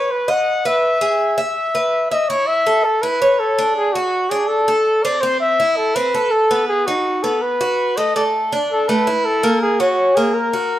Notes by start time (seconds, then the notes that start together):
Already playing: B4 C#5
0.11 B4
0.28 D#5 F#5
0.65 B4 E5
1.01 G#4
1.38 E5
1.75 B4
2.11 D#5 E5
2.29 E4 C#5
2.47 E5
2.67 A4
2.85 A4
3.02 E4 B4
3.22 C#5
3.39 A4
3.58 D4
3.76 G#4
3.93 F#4
4.30 D4 G#4
4.48 A4
4.68 A4
5.03 C4 D5
5.21 C4 C5
5.41 E5
5.60 E4
5.77 A4
5.95 C4 B4
6.14 A4
6.31 A4
6.51 B3
6.68 G#4
6.86 D#4 F#4
7.23 B3 A4
7.42 B4
7.61 F#4
7.97 A3 D#5
8.16 A3 D5
8.52 D4
8.72 A4
8.88 A3 B4
9.07 E4
9.25 A4
9.43 A#3
9.62 G#4
9.80 C#4 F#4
10.15 A#3 G#4
10.34 A#4
10.53 F#4